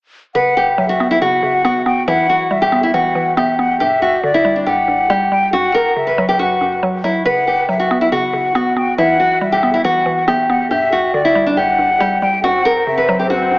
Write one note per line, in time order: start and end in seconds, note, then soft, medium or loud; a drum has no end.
0.35 1.20 C#3 medium
0.35 0.54 B4 medium
0.35 0.76 F#5 loud
0.57 0.87 G4 medium
0.78 1.86 F#3 medium
0.78 1.19 E5 medium
0.89 1.08 F#4 medium
1.00 1.63 B3 medium
1.11 1.20 E4 medium
1.21 1.42 C#3 medium
1.21 1.62 F#4 medium
1.21 1.82 F#5 medium
1.43 2.08 C#3 medium
1.65 1.85 B3 medium
1.65 2.05 F#4 medium
1.86 2.08 B3 medium
1.86 2.07 G5 medium
2.08 2.93 E3 medium
2.08 2.27 E4 medium
2.08 2.48 F#5 loud
2.29 2.60 F#4 medium
2.51 3.59 G3 medium
2.51 2.91 E5 medium
2.62 2.81 G4 medium
2.72 3.36 B3 medium
2.83 2.93 E4 medium
2.94 3.14 E3 medium
2.94 3.35 F#4 medium
2.94 3.35 F#5 medium
3.15 3.80 E3 medium
3.37 3.58 B3 loud
3.37 3.78 G4 medium
3.37 3.58 E5 medium
3.59 3.80 B3 medium
3.59 3.79 F#5 medium
3.80 4.65 G2 medium
3.80 3.99 G4 medium
3.80 4.21 E5 loud
4.02 4.32 F#4 medium
4.23 5.31 D3 medium
4.23 4.64 D5 medium
4.34 4.53 E4 medium
4.45 5.09 G3 medium
4.56 4.65 D4 medium
4.66 4.87 G2 medium
4.66 5.07 G4 medium
4.66 5.28 F#5 loud
4.88 5.53 G2 medium
5.10 5.31 G3 loud
5.10 5.50 G4 medium
5.32 5.53 G3 medium
5.32 5.52 G5 medium
5.53 6.38 F#2 medium
5.53 5.72 F#4 medium
5.53 5.94 F#5 medium
5.74 6.05 A#4 medium
5.96 7.04 C#3 medium
5.96 6.37 E5 medium
6.07 6.26 B4 medium
6.18 6.82 F#3 loud
6.29 6.38 G4 medium
6.39 6.60 F#2 medium
6.39 7.00 F#4 medium
6.39 6.80 F#5 medium
6.61 7.26 F#2 medium
6.83 7.03 F#3 loud
7.04 7.26 F#3 medium
7.04 7.23 E4 medium
7.25 8.11 C#3 medium
7.25 7.45 B4 medium
7.25 7.66 F#5 loud
7.47 7.78 G4 medium
7.69 8.77 F#3 medium
7.69 8.09 E5 medium
7.79 7.99 F#4 medium
7.91 8.54 B3 loud
8.01 8.11 E4 medium
8.12 8.32 C#3 medium
8.12 8.53 F#4 medium
8.12 8.73 F#5 medium
8.33 8.98 C#3 medium
8.55 8.75 B3 loud
8.55 8.96 F#4 medium
8.76 8.98 B3 medium
8.76 8.97 G5 medium
8.98 9.83 E3 medium
8.98 9.17 E4 medium
8.98 9.39 F#5 loud
9.20 9.50 F#4 medium
9.41 10.49 G3 medium
9.41 9.82 E5 medium
9.52 9.71 G4 medium
9.63 10.26 B3 medium
9.74 9.83 E4 medium
9.84 10.05 E3 medium
9.84 10.25 F#4 medium
9.84 10.25 F#5 medium
10.06 10.71 E3 medium
10.28 10.48 B3 loud
10.28 10.68 G4 medium
10.28 10.48 E5 medium
10.49 10.71 B3 medium
10.49 10.70 F#5 medium
10.71 11.56 G2 medium
10.71 10.90 G4 medium
10.71 11.12 E5 loud
10.71 swell medium
10.92 11.23 F#4 medium
11.14 12.22 D3 medium
11.14 11.55 D5 medium
11.25 11.44 E4 medium
11.35 11.99 G3 medium
11.46 11.56 D4 medium
11.57 11.77 G2 medium
11.57 11.98 G4 medium
11.57 12.18 F#5 loud
11.78 12.43 G2 medium
12.00 12.21 G3 medium
12.00 12.41 G4 medium
12.22 12.44 G3 medium
12.22 12.43 G5 medium
12.44 13.29 F#2 medium
12.44 12.63 F#4 medium
12.44 12.84 F#5 loud
12.65 12.96 A#4 medium
12.87 13.59 C#3 medium
12.87 13.27 E5 medium
12.98 13.17 B4 medium
13.09 13.59 F#3 loud
13.19 13.29 G4 medium
13.30 13.50 F#2 medium
13.30 13.59 F#4 medium
13.30 13.59 F#5 medium
13.51 13.59 F#2 medium